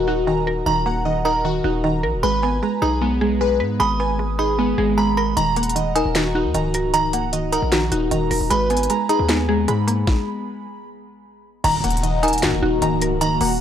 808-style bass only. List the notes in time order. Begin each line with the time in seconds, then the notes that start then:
Already playing: D#1
0.66 D#1
1.64 D#1
2.03 A#1
2.13 D#1
2.23 G#1
2.82 B1
3.60 G#2
3.80 G#1
4.78 G#1
5.37 D#1
6.05 D#1
6.45 D#2
6.54 C#1
7.62 A#1
7.92 D#1
8.11 D#1
8.31 D#1
8.41 D#1
8.51 G#1
9.19 D#2
9.68 G#2
11.64 D#1
11.84 D#1
12.43 A#2
12.52 D#1
12.62 D#1
12.82 C#1
13.41 D#1